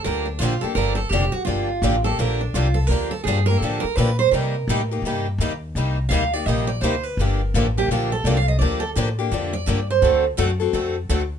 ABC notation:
X:1
M:4/4
L:1/16
Q:"Swing" 1/4=168
K:Gm
V:1 name="Steel-string acoustic guitar"
B2 D2 F2 A2 B2 A2 G2 ^F2 | F6 A2 B2 D2 F2 A2 | B2 A2 _A2 B2 =A2 B2 =B2 c2 | B8 z8 |
z4 f2 d2 e2 d2 c2 =B2 | B6 G2 F2 A2 (3d2 f2 e2 | d2 A2 z6 d4 c2- | c2 z12 z2 |]
V:2 name="Steel-string acoustic guitar"
[D,F,B,DG]2 z2 [D,F,B,DG] z [B,DG]2 [D,F,B,DG]2 z2 [D,F,B,DG] z3 | [D,F,B,DG]2 z2 [D,F,B,DG] z [B,DG]2 [D,F,B,DG]2 z2 [D,F,B,DG] z3 | [D,F,B,DG]2 z2 [D,F,B,DG] z [B,DG]2 [D,F,B,DG]2 z2 [D,F,B,DG] z3 | [C,G,B,EG]2 z2 [C,G,B,EG] z [B,EG]2 [C,G,B,EG]2 z2 [C,G,B,EG] z3 |
[C,G,B,EG]2 z2 [C,G,B,EG] z [B,EG]2 [C,G,B,EG]2 z2 [C,G,B,EG] z3 | [D,F,B,DG]2 z2 [D,F,B,DG] z [B,DG]2 [D,F,B,DG]2 z2 [D,F,B,DG] z3 | [D,F,B,DG]2 z2 [D,F,B,DG] z [B,DG]2 [D,F,B,DG]2 z2 [D,F,B,DG] z3 | [D,A,C^FA]2 z2 [D,A,CFA] z [CFA]2 [D,A,CFA]2 z2 [D,A,CFA] z3 |]
V:3 name="Steel-string acoustic guitar"
[D,F,B,DG]2 z2 [D,F,B,DG] z3 [D,F,B,DG]2 z2 [D,F,B,DG] z3 | [D,F,B,DG]2 z2 [D,F,B,DG] z3 [D,F,B,DG]2 z2 [D,F,B,DG] z3 | [D,F,B,DG]2 z2 [D,F,B,DG] z3 [D,F,B,DG]2 z2 [D,F,B,DG] z3 | [C,G,B,EG]2 z2 [C,G,B,EG] z3 [C,G,B,EG]2 z2 [C,G,B,EG] z3 |
[C,G,B,EG]2 z2 [C,G,B,EG] z3 [C,G,B,EG]2 z2 [C,G,B,EG] z3 | [D,F,B,DG]2 z2 [D,F,B,DG] z3 [D,F,B,DG]2 z2 [D,F,B,DG] z3 | [D,F,B,DG]2 z2 [D,F,B,DG] z3 [D,F,B,DG]2 z2 [D,F,B,DG] z3 | [D,A,C^FA]2 z2 [D,A,CFA] z3 [D,A,CFA]2 z2 [D,A,CFA] z3 |]
V:4 name="Upright bass" clef=bass
D,,4 B,,,2 z2 G,,,4 F,,,2 z2 | G,,,4 A,,,4 B,,,4 C,,4 | D,,4 G,,4 A,,2 z2 B,,4 | C,4 A,,4 G,,4 E,,4 |
C,,4 D,,4 B,,,4 D,,4 | G,,,4 A,,,4 B,,,4 C,,4 | D,,4 A,,4 F,,4 G,,4 | D,,4 ^F,,4 ^E,,4 D,,4 |]